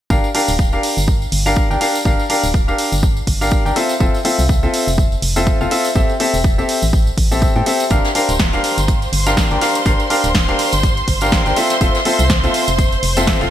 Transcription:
0.10 fm bass G1, grand piano D4 G4 A#4 F5, kick, tambourine
0.24 tambourine
0.35 grand piano D4 G4 A#4 F5, open hi-hat
0.48 fm bass D1, tambourine
0.59 kick, tambourine
0.73 grand piano D4 G4 A#4 F5, tambourine
0.83 open hi-hat
0.97 fm bass G1, tambourine
1.08 kick, tambourine
1.22 tambourine
1.32 fm bass G1, open hi-hat
1.46 grand piano D4 G4 A#4 F5, tambourine
1.56 kick, tambourine
1.70 fm bass G1, grand piano D4 G4 A#4 G5, tambourine
1.81 grand piano D4 G4 A#4 F5, open hi-hat
1.95 tambourine
2.05 fm bass G1, grand piano D4 G4 A#4 F5, kick, tambourine
2.19 tambourine
2.30 grand piano D4 G4 A#4 F5, open hi-hat
2.43 fm bass D1, tambourine
2.54 kick, tambourine
2.68 grand piano D4 G4 A#4 F5, tambourine
2.78 open hi-hat
2.92 fm bass G1, tambourine
3.03 kick, tambourine
3.17 tambourine
3.27 fm bass G1, kick, open hi-hat
3.41 grand piano D4 G4 A#4 F5, tambourine
3.51 kick, tambourine
3.65 fm bass G1, grand piano D4 G4 A#4 G5, tambourine
3.76 grand piano C4 F4 A4 E5, open hi-hat
3.89 tambourine
4.00 fm bass F1, grand piano C4 F4 A4 E5, kick, tambourine
4.14 tambourine
4.25 grand piano C4 F4 A4 E5, open hi-hat
4.39 fm bass C2, tambourine
4.49 kick, tambourine
4.63 grand piano C4 F4 A4 E5, tambourine
4.74 open hi-hat
4.87 fm bass F1, tambourine
4.98 kick, tambourine
5.12 tambourine
5.22 fm bass F1, open hi-hat
5.36 grand piano C4 F4 A4 E5, tambourine
5.47 kick, tambourine
5.61 fm bass F1, grand piano C4 F4 A4 F5, tambourine
5.71 grand piano C4 F4 A4 E5, open hi-hat
5.85 tambourine
5.95 fm bass A1, grand piano C4 G4 A4 E5, kick, tambourine
6.09 tambourine
6.20 grand piano C4 G4 A4 E5, open hi-hat
6.34 fm bass E1, tambourine
6.44 kick, tambourine
6.58 grand piano C4 G4 A4 E5, tambourine
6.69 open hi-hat
6.82 fm bass A1, tambourine
6.93 kick, tambourine
7.07 tambourine
7.18 fm bass A1, kick, open hi-hat
7.31 grand piano C4 G4 A4 E5, tambourine
7.42 kick, tambourine
7.56 fm bass A2, grand piano C4 G4 A4 G5, tambourine
7.66 grand piano C4 G4 A4 E5, open hi-hat
7.80 open hi-hat, tambourine
7.90 fm bass G1, grand piano D4 G4 A#4 F5, violin section C5 C6, kick, closed hi-hat, tambourine
8.05 snare, closed hi-hat, tambourine
8.15 grand piano D4 G4 A#4 F5, closed hi-hat, open hi-hat
8.29 fm bass D1, closed hi-hat, tambourine
8.39 kick, snare, closed hi-hat
8.53 grand piano D4 G4 A#4 F5, closed hi-hat, tambourine
8.64 closed hi-hat, open hi-hat
8.78 fm bass G1, closed hi-hat, tambourine
8.88 kick, closed hi-hat, tambourine
9.02 closed hi-hat, tambourine
9.13 fm bass G1, closed hi-hat, open hi-hat
9.26 grand piano D4 G4 A#4 F5, snare, closed hi-hat, tambourine
9.37 kick, snare, closed hi-hat, tambourine
9.51 fm bass G1, grand piano D4 G4 A#4 G5, closed hi-hat, tambourine
9.61 grand piano D4 G4 A#4 F5, snare, open hi-hat
9.75 closed hi-hat, tambourine
9.85 fm bass G1, grand piano D4 G4 A#4 F5, kick, closed hi-hat, tambourine
10.00 closed hi-hat, tambourine
10.10 grand piano D4 G4 A#4 F5, closed hi-hat, open hi-hat
10.24 fm bass D1, closed hi-hat, tambourine
10.34 kick, snare, closed hi-hat, tambourine
10.48 grand piano D4 G4 A#4 F5, closed hi-hat, tambourine
10.58 closed hi-hat, open hi-hat
10.72 fm bass G1, closed hi-hat, tambourine
10.83 kick, closed hi-hat, tambourine
10.97 closed hi-hat, tambourine
11.08 fm bass G1, kick, closed hi-hat, open hi-hat
11.21 grand piano D4 G4 A#4 F5, closed hi-hat, tambourine
11.32 kick, snare, closed hi-hat, tambourine
11.46 fm bass G1, grand piano D4 G4 A#4 G5, closed hi-hat, tambourine
11.56 grand piano C4 F4 A4 E5, closed hi-hat, open hi-hat
11.70 snare, closed hi-hat, tambourine
11.81 fm bass F1, grand piano C4 F4 A4 E5, kick, closed hi-hat, tambourine
11.95 snare, closed hi-hat, tambourine
12.05 grand piano C4 F4 A4 E5, closed hi-hat, open hi-hat
12.19 fm bass C2, closed hi-hat, tambourine
12.30 kick, snare, closed hi-hat, tambourine
12.44 grand piano C4 F4 A4 E5, closed hi-hat, tambourine
12.54 closed hi-hat, open hi-hat
12.68 fm bass F1, closed hi-hat, tambourine
12.78 kick, closed hi-hat, tambourine
12.92 closed hi-hat, tambourine
13.03 fm bass F1, closed hi-hat, open hi-hat
13.17 grand piano C4 F4 A4 E5, snare, closed hi-hat, tambourine
13.27 kick, snare, closed hi-hat, tambourine
13.41 fm bass F1, grand piano C4 F4 A4 F5, closed hi-hat, tambourine

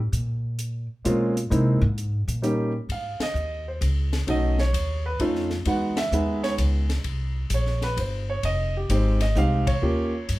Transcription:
Already playing: upright bass A2
0.12 upright bass A#2, closed hi-hat
0.59 closed hi-hat
1.05 upright bass B2, grand piano G#3 A#3 C4 C#4 F4, closed hi-hat
1.37 closed hi-hat
1.50 upright bass C3, grand piano G#3 A#3 C4 D#4 E4, closed hi-hat
1.81 upright bass G#2
1.98 closed hi-hat
2.28 upright bass A#2, closed hi-hat
2.42 grand piano G3 A#3 C#4 D#4 G4, closed hi-hat
2.89 upright bass G#2, grand piano F5, kick, ride
3.19 grand piano D#5, muted upright bass stroke, snare, ride
3.34 upright bass D#2, hi-hat pedal
3.68 grand piano C5
3.81 upright bass C#2, kick, hi-hat pedal, ride
4.13 snare, ride
4.27 upright bass B1, grand piano A3 C#4 D#4 F#4 D#5, kick, ride
4.59 grand piano C#5, snare
4.73 upright bass D#2, kick, hi-hat pedal, ride
5.06 grand piano B4
5.20 upright bass F2, grand piano A3 C#4 D#4 F4, kick, ride
5.35 snare
5.50 snare
5.65 upright bass E2, grand piano G#3 B3 D#4 F#4 F#5, kick, ride
5.97 grand piano E5, snare, ride
6.12 upright bass D#2, grand piano G#3 B3 D#4 G#4, hi-hat pedal
6.44 grand piano C#5, snare, ride
6.58 upright bass C#2, kick, hi-hat pedal, ride
6.90 snare, ride
7.04 upright bass C2, kick, ride
7.50 upright bass A#1, kick, hi-hat pedal, ride
7.54 grand piano C#5
7.66 snare
7.82 grand piano B4, snare, ride
7.97 upright bass G1, grand piano C5, kick, ride
8.30 grand piano C#5
8.43 upright bass F1, grand piano D#5, kick, ride
8.77 grand piano G4
8.89 upright bass G#1, grand piano G#3 C4 D#4 G4 C5, kick, hi-hat pedal, ride
9.20 grand piano D#5, snare, ride
9.35 upright bass C2, grand piano G#3 C4 D#4 G4 F5, kick, hi-hat pedal
9.67 grand piano C#5, kick, ride
9.82 upright bass D#2, grand piano A#3 C#4 F4 G4
10.29 upright bass G2, kick, hi-hat pedal, ride

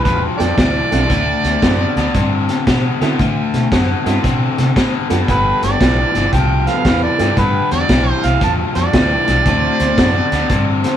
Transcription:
0.04 fingered electric bass E2, overdriven electric guitar G2 F3, harmonica B4, kick, closed hi-hat
0.38 fingered electric bass F2, honky-tonk piano A3 B3 D4 F4 G4, harmonica D5, snare, closed hi-hat
0.57 fingered electric bass D2, overdriven electric guitar G2 E3, kick, snare, closed hi-hat
0.91 fingered electric bass B1, overdriven electric guitar G2 E3, honky-tonk piano A3 C4 D4 E4 F#4, snare, closed hi-hat
1.09 fingered electric bass D2, overdriven electric guitar D3 A3, kick, snare, closed hi-hat
1.44 fingered electric bass D2, snare, closed hi-hat
1.62 fingered electric bass F#2, overdriven electric guitar D3 B3, honky-tonk piano A3 C4 D4 E4 F#4, kick, snare, closed hi-hat
1.96 fingered electric bass D2, overdriven electric guitar D3 B3, snare, closed hi-hat
2.14 fingered electric bass G2, overdriven electric guitar D3 C4, kick, snare, closed hi-hat
2.49 snare, closed hi-hat
2.67 fingered electric bass B2, overdriven electric guitar D3 B3, kick, snare, closed hi-hat
3.01 overdriven electric guitar D3 B3, fingered electric bass D3, honky-tonk piano A3 C4 D4 E4 F#4, snare, closed hi-hat
3.19 overdriven electric guitar D3 A3, fingered electric bass D3, kick, snare, closed hi-hat
3.54 fingered electric bass B2, snare, closed hi-hat
3.72 fingered electric bass F#2, overdriven electric guitar D3 B3, kick, snare, closed hi-hat
4.06 fingered electric bass G2, overdriven electric guitar D3 B3, honky-tonk piano A3 C4 D4 E4 F#4, snare, closed hi-hat
4.23 fingered electric bass B2, overdriven electric guitar D3 C4, kick, snare, closed hi-hat
4.58 fingered electric bass C3, snare, closed hi-hat
4.76 fingered electric bass A2, overdriven electric guitar D3 B3, kick, snare, closed hi-hat
5.10 fingered electric bass F#2, overdriven electric guitar D3 B3, honky-tonk piano A3 B3 D4 F4 G4, snare, closed hi-hat
5.28 fingered electric bass G1, overdriven electric guitar G2 D3, horn section B3 F4 A4 B4, harmonica B4, kick, snare, closed hi-hat
5.63 fingered electric bass G1, harmonica D5, snare, closed hi-hat
5.80 fingered electric bass B1, overdriven electric guitar G2 E3, honky-tonk piano A3 B3 D4 F4 G4, kick, snare, closed hi-hat
6.15 fingered electric bass G1, overdriven electric guitar G2 E3, snare, closed hi-hat
6.33 fingered electric bass C2, overdriven electric guitar G2 F3, harmonica G5, kick, snare, closed hi-hat
6.67 horn section B3 F4 A4 B4, harmonica F5, snare, closed hi-hat
6.85 fingered electric bass E2, overdriven electric guitar G2 E3, kick, snare, closed hi-hat
7.03 harmonica D5
7.18 overdriven electric guitar G2 E3, fingered electric bass G2, honky-tonk piano A3 B3 D4 F4 G4, snare, closed hi-hat
7.37 overdriven electric guitar G2 D3, fingered electric bass G2, harmonica B4, kick, snare, closed hi-hat
7.71 fingered electric bass E2, harmonica D5, snare, closed hi-hat
7.89 fingered electric bass B1, overdriven electric guitar G2 E3, kick, snare, closed hi-hat
8.10 harmonica C5
8.23 fingered electric bass C2, overdriven electric guitar G2 E3, harmonica F5, snare, closed hi-hat
8.41 fingered electric bass E2, overdriven electric guitar G2 F3, harmonica A5, kick, snare, closed hi-hat
8.75 fingered electric bass F2, harmonica D5, snare, closed hi-hat
8.93 fingered electric bass D2, overdriven electric guitar G2 E3, honky-tonk piano A3 B3 D4 F4 G4, kick, snare, closed hi-hat
9.27 fingered electric bass B1, overdriven electric guitar G2 E3, snare, closed hi-hat
9.46 fingered electric bass D2, overdriven electric guitar D3 A3, horn section C4 E4 F#4 C5, kick, snare, closed hi-hat
9.80 fingered electric bass D2, snare, closed hi-hat
9.97 fingered electric bass F#2, overdriven electric guitar D3 B3, honky-tonk piano A3 C4 D4 E4 F#4, kick, snare, closed hi-hat
10.32 fingered electric bass D2, overdriven electric guitar D3 B3, snare, closed hi-hat
10.50 fingered electric bass G2, overdriven electric guitar D3 C4, kick, snare, closed hi-hat
10.84 horn section C4 E4 F#4 C5, snare, closed hi-hat

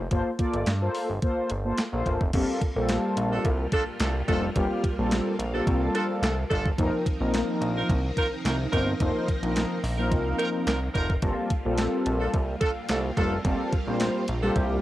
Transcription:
0.11 analog synth bass G1, analog polysynth A#3 F4 A4 C5, kick, closed hi-hat
0.39 analog polysynth A#3 F4 A4 D5, kick, closed hi-hat
0.54 analog synth bass G1, closed hi-hat
0.66 analog synth bass G2, snare, clap, closed hi-hat
0.81 analog polysynth A#3 F4 A4 C5
0.95 open hi-hat
1.09 analog synth bass G1
1.22 analog polysynth A#3 F4 A4 C5, kick, closed hi-hat
1.50 analog synth bass G1, closed hi-hat
1.64 analog polysynth A#3 F4 A4 C5
1.77 snare, clap, closed hi-hat
1.92 analog synth bass A#1, analog polysynth A#3 F4 A4 C5
2.06 analog synth bass G1, kick, closed hi-hat
2.21 analog synth bass F1, kick
2.33 analog synth bass G1, analog polysynth G3 A#3 C4 F4 A4, string machine G3 A#3 F4, kick, closed hi-hat, crash
2.61 kick, closed hi-hat
2.75 analog synth bass A#1, analog polysynth G3 A#3 C4 F4 A4
2.89 snare, clap, closed hi-hat
3.17 analog synth bass A#1, closed hi-hat
3.32 horn section D4 F4 A4
3.45 analog synth bass C2, kick, closed hi-hat
3.72 horn section D4 F4 A4, kick, closed hi-hat
4.00 analog synth bass C2, horn section D4 F4 A4, snare, clap, closed hi-hat
4.28 analog synth bass F1, analog polysynth G3 A#3 C4 F4 A4, horn section D4 F4 A4, kick, closed hi-hat
4.55 analog synth bass G1, analog polysynth G3 A#3 C4 F4 G4, kick, closed hi-hat
4.84 kick, closed hi-hat
4.98 analog synth bass A#1, analog polysynth G3 A#3 C4 F4 A4
5.11 snare, clap, closed hi-hat
5.39 analog synth bass A#1, closed hi-hat
5.53 analog polysynth G3 A#3 C4 F4 A4, horn section D4 F4 A4
5.67 analog synth bass C2, kick, closed hi-hat
5.95 horn section D4 F4 A4, closed hi-hat
6.22 analog synth bass C2, horn section D4 F4 A4, snare, clap, closed hi-hat
6.50 analog synth bass G1, horn section D4 F4 A4, kick, closed hi-hat
6.66 kick
6.78 analog synth bass F1, analog polysynth F3 A#3 C4 D#4 A#4, string machine F3 C4 D#4 A#4, kick, closed hi-hat
7.06 kick, closed hi-hat
7.20 analog synth bass A#1, analog polysynth F3 A#3 C4 D#4 A#4
7.34 snare, clap, closed hi-hat
7.61 analog synth bass A#1, closed hi-hat
7.76 horn section D#4 F4 A#4
7.89 analog synth bass C2, kick, closed hi-hat
8.17 horn section D#4 F4 A#4, kick, closed hi-hat
8.45 analog synth bass C2, horn section D#4 F4 A#4, snare, clap, closed hi-hat
8.72 analog synth bass G1, analog polysynth F3 A#3 C4 D#4 C5, horn section D#4 F4 A#4, kick, closed hi-hat
8.99 analog synth bass F1, analog polysynth F3 A#3 C4 D#4 C5, kick, closed hi-hat
9.28 kick, closed hi-hat
9.42 analog synth bass A#1, analog polysynth F3 A#3 C4 D#4 A#4, closed hi-hat
9.56 snare, clap, closed hi-hat
9.84 analog synth bass A#1, open hi-hat
9.98 analog polysynth F3 A#3 C4 D#4 A#4, horn section D#4 F4 A#4
10.12 analog synth bass C2, kick, closed hi-hat
10.39 horn section D#4 F4 A#4, closed hi-hat
10.67 analog synth bass C2, horn section D#4 F4 A#4, snare, clap, closed hi-hat
10.95 analog synth bass F1, horn section D#4 F4 A#4, kick, closed hi-hat
11.10 kick
11.22 analog synth bass G1, analog polysynth G3 A#3 C4 F4 A4, string machine G3 A#3 F4, kick, closed hi-hat
11.50 kick, closed hi-hat
11.65 analog synth bass A#1, analog polysynth G3 A#3 C4 F4 A4
11.78 snare, clap, closed hi-hat
12.06 analog synth bass A#1, closed hi-hat
12.20 horn section D4 F4 A4
12.34 analog synth bass C2, kick, closed hi-hat
12.61 horn section D4 F4 A4, kick, closed hi-hat
12.89 analog synth bass C2, horn section D4 F4 A4, snare, clap, closed hi-hat
13.17 analog synth bass F1, analog polysynth G3 A#3 C4 F4 A4, horn section D4 F4 A4, kick, closed hi-hat
13.44 analog synth bass G1, analog polysynth G3 A#3 C4 F4 A4, kick, closed hi-hat
13.73 kick, closed hi-hat
13.87 analog synth bass A#1, analog polysynth G3 A#3 C4 F4 C5
14.00 snare, clap, closed hi-hat
14.28 analog synth bass A#1, closed hi-hat
14.42 analog polysynth G3 A#3 C4 F4 G4, horn section D4 F4 A4
14.56 analog synth bass C2, kick, closed hi-hat

